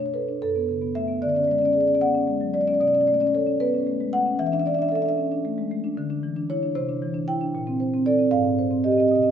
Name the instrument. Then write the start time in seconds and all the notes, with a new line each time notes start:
marimba
Already playing: B2
0.00 D4 C#5
0.06 C#5
0.14 A4 B4
0.29 D4
0.42 F#2 A4
0.56 B3
0.69 C#3
0.81 B3
0.95 A3 E5
1.08 B3
1.22 D3 D5
1.29 D5
1.35 C#4 D5
1.44 G#3 D5
1.51 D5
1.58 C#4 D5
1.65 D5
1.73 G#4 D5
1.81 D5
1.87 C#4 D5
1.95 D5
2.01 B3 F#5
2.14 C#4
2.28 G#3
2.41 F#3
2.54 G#3 D5
2.61 D5
2.67 C#4 D5
2.74 D5
2.80 B2 D5
2.88 D5
2.94 C#4 D5
3.01 D5
3.07 A3 D5
3.14 D5
3.20 C#4 D5
3.27 D5
3.34 A4 C#5
3.47 C#4
3.60 B3 B4
3.74 C#4
3.87 A3
4.00 G#3
4.13 A3 F#5
4.26 C#4
4.39 E3 E5
4.46 E5
4.52 D4 E5
4.59 E5
4.66 D5 E5
4.74 E5
4.79 D4 E5
4.89 A4 E5
4.95 E5
5.02 D4 E5
5.09 E5
5.18 C#4
5.32 D4
5.45 A3
5.58 G#3
5.71 A3
5.84 D4
5.97 D3
6.10 D4
6.23 E3
6.36 D4
6.50 E4 C#5
6.63 D4
6.75 C3 C5
6.89 D4
7.02 E3
7.14 D4
7.28 E4 G5
7.41 D4
7.55 A#2
7.67 C4
7.80 C5
7.94 C4
8.06 A4 D5
8.19 C4
8.31 G#2 F5
8.44 C4
8.59 C5
8.71 C4
8.84 G4 D#5
8.92 D#5
8.98 C4 D#5
9.08 B2 D#5
9.15 D#5
9.22 C#4 D#5